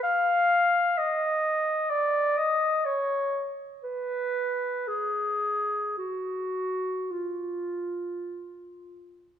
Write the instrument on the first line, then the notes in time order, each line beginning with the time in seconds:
clarinet
0.03 F5
0.98 D#5
1.90 D5
2.37 D#5
2.85 C#5
3.84 B4
4.88 G#4
5.98 F#4
7.11 F4